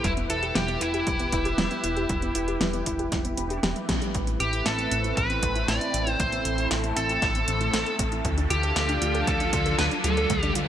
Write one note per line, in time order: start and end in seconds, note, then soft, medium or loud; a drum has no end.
0.00 4.11 E4 medium
0.00 4.11 B4 medium
0.04 0.26 E1 loud
0.04 0.11 G3 medium
0.04 0.11 E4 medium
0.04 4.11 G4 medium
0.04 kick loud
0.04 closed hi-hat medium
0.17 0.28 B3 medium
0.17 closed hi-hat soft
0.30 0.52 E1 medium
0.30 0.36 E4 medium
0.30 0.55 A4 medium
0.30 closed hi-hat medium
0.43 0.55 G4 medium
0.43 closed hi-hat soft
0.55 0.78 E1 medium
0.55 0.68 G3 loud
0.55 0.82 G4 medium
0.55 snare loud
0.55 closed hi-hat medium
0.68 0.75 B3 medium
0.68 closed hi-hat soft
0.81 1.03 E1 medium
0.81 3.59 E4 medium
0.81 0.92 E4 medium
0.81 closed hi-hat medium
0.94 1.05 G4 medium
0.94 closed hi-hat soft
1.07 1.29 E1 medium
1.07 1.13 G3 medium
1.07 kick loud
1.07 closed hi-hat medium
1.20 1.30 B3 medium
1.20 closed hi-hat soft
1.32 1.55 E1 medium
1.32 1.39 E4 medium
1.32 kick loud
1.32 closed hi-hat medium
1.45 1.58 G4 medium
1.45 closed hi-hat soft
1.58 1.69 E1 medium
1.58 1.70 G3 loud
1.58 snare loud
1.58 closed hi-hat medium
1.71 1.78 B3 medium
1.71 closed hi-hat soft
1.84 2.06 E1 medium
1.84 1.95 E4 medium
1.84 closed hi-hat medium
1.97 2.08 G4 medium
1.97 closed hi-hat soft
2.09 2.32 E1 loud
2.09 2.16 G3 medium
2.09 kick loud
2.09 closed hi-hat medium
2.22 2.33 B3 medium
2.22 closed hi-hat soft
2.35 2.57 E1 medium
2.35 2.42 E4 medium
2.35 closed hi-hat medium
2.48 2.60 G4 medium
2.48 closed hi-hat soft
2.61 2.83 E1 medium
2.61 2.73 G3 loud
2.61 snare loud
2.61 closed hi-hat medium
2.73 2.80 B3 medium
2.73 closed hi-hat soft
2.86 3.09 E1 medium
2.86 2.97 E4 medium
2.86 kick medium
2.86 closed hi-hat medium
2.99 3.10 G4 medium
2.99 closed hi-hat soft
3.12 3.34 E1 medium
3.12 3.19 G3 medium
3.12 kick loud
3.12 snare medium
3.12 closed hi-hat medium
3.25 3.36 B3 medium
3.25 closed hi-hat soft
3.37 3.60 E1 medium
3.37 3.48 B3 medium
3.37 closed hi-hat medium
3.50 3.62 G4 medium
3.50 closed hi-hat soft
3.63 3.74 E1 loud
3.63 3.74 G4 medium
3.63 snare loud
3.63 closed hi-hat medium
3.76 3.87 G3 medium
3.76 closed hi-hat soft
3.89 4.00 B1 loud
3.89 3.95 G4 medium
3.89 kick loud
3.89 snare medium
3.89 closed hi-hat medium
4.02 4.08 G3 medium
4.02 closed hi-hat soft
4.14 4.37 A1 loud
4.14 8.21 A3 medium
4.14 8.21 C4 medium
4.14 8.21 E4 medium
4.14 6.18 B4 medium
4.14 kick loud
4.14 closed hi-hat medium
4.14 riser medium
4.27 4.38 B3 medium
4.27 closed hi-hat soft
4.40 4.62 A1 medium
4.40 4.47 C4 medium
4.40 4.67 G4 medium
4.40 closed hi-hat medium
4.53 4.65 E4 medium
4.53 closed hi-hat soft
4.66 4.88 A1 medium
4.66 4.78 A3 loud
4.66 5.17 A4 medium
4.66 snare loud
4.66 closed hi-hat medium
4.79 4.85 B3 medium
4.79 closed hi-hat soft
4.91 5.14 A1 medium
4.91 5.02 C4 medium
4.91 closed hi-hat medium
5.04 5.15 E4 medium
5.04 closed hi-hat soft
5.17 5.39 A1 medium
5.17 5.24 A3 medium
5.17 5.70 B4 medium
5.17 kick loud
5.17 closed hi-hat medium
5.30 5.41 B3 medium
5.30 closed hi-hat soft
5.43 5.65 A1 medium
5.43 5.49 C4 medium
5.43 kick loud
5.43 closed hi-hat medium
5.56 5.68 E4 medium
5.56 closed hi-hat soft
5.68 5.79 A1 loud
5.68 5.81 A3 loud
5.68 6.10 D5 loud
5.68 snare loud
5.68 closed hi-hat medium
5.81 5.88 B3 medium
5.81 closed hi-hat soft
5.94 6.16 A1 medium
5.94 6.05 C4 medium
5.94 closed hi-hat loud
6.07 6.18 E4 medium
6.07 6.20 C5 loud
6.07 closed hi-hat soft
6.19 6.42 A1 loud
6.19 6.26 A3 medium
6.19 10.26 A4 medium
6.19 6.68 C5 medium
6.19 kick loud
6.19 closed hi-hat medium
6.32 6.43 B3 medium
6.32 closed hi-hat soft
6.45 6.67 A1 medium
6.45 6.52 C4 medium
6.45 closed hi-hat medium
6.58 6.71 E4 medium
6.58 closed hi-hat soft
6.71 6.93 A1 medium
6.71 6.83 A3 loud
6.71 snare loud
6.71 closed hi-hat medium
6.84 6.90 B3 medium
6.84 closed hi-hat soft
6.97 7.19 A1 medium
6.97 7.07 C4 medium
6.97 7.95 A4 loud
6.97 closed hi-hat medium
7.09 7.20 E4 medium
7.09 closed hi-hat soft
7.22 7.44 A1 medium
7.22 7.29 A3 medium
7.22 kick loud
7.22 snare medium
7.22 closed hi-hat medium
7.35 7.46 B3 medium
7.35 closed hi-hat soft
7.48 7.70 A1 medium
7.48 7.54 C4 medium
7.48 closed hi-hat loud
7.61 7.73 E4 medium
7.61 closed hi-hat soft
7.74 7.85 A1 medium
7.74 7.86 A3 loud
7.74 snare loud
7.74 closed hi-hat medium
7.86 7.93 B3 medium
7.86 closed hi-hat soft
7.99 8.21 A1 medium
7.99 8.10 C4 medium
7.99 kick loud
7.99 closed hi-hat loud
8.12 8.23 E4 medium
8.12 closed hi-hat soft
8.25 8.47 D2 loud
8.25 8.31 A3 medium
8.25 10.68 D4 medium
8.25 10.68 F4 medium
8.25 kick loud
8.25 closed hi-hat medium
8.38 8.49 D4 medium
8.38 closed hi-hat soft
8.50 8.73 D2 medium
8.50 8.57 F4 medium
8.50 9.30 G4 medium
8.50 closed hi-hat medium
8.63 8.76 A4 medium
8.63 closed hi-hat soft
8.76 8.98 D2 medium
8.76 8.88 A3 loud
8.76 snare loud
8.76 closed hi-hat medium
8.89 8.96 D4 medium
8.89 closed hi-hat soft
9.02 9.24 D2 medium
9.02 9.13 F4 medium
9.02 closed hi-hat medium
9.15 9.25 A4 medium
9.15 closed hi-hat soft
9.27 9.50 D2 medium
9.27 9.34 A3 medium
9.27 9.75 A4 loud
9.27 kick loud
9.27 closed hi-hat medium
9.40 9.51 D4 medium
9.40 closed hi-hat soft
9.53 9.75 D2 medium
9.53 9.60 F4 medium
9.53 kick loud
9.53 closed hi-hat medium
9.66 9.78 A4 medium
9.66 closed hi-hat soft
9.79 9.90 D2 medium
9.79 9.91 A3 loud
9.79 9.86 B4 loud
9.79 snare loud
9.79 closed hi-hat medium
9.91 9.98 D4 medium
9.91 closed hi-hat soft
10.04 10.26 D2 medium
10.04 10.15 F4 medium
10.04 10.52 A4 loud
10.04 closed hi-hat loud
10.17 10.28 A4 medium
10.17 closed hi-hat soft
10.30 10.52 D2 loud
10.30 10.37 A3 medium
10.30 10.68 B4 medium
10.30 kick loud
10.30 closed hi-hat medium
10.30 noise sweep medium
10.43 10.54 D4 medium
10.43 closed hi-hat soft
10.55 10.68 D2 medium
10.55 10.62 F4 medium
10.55 closed hi-hat medium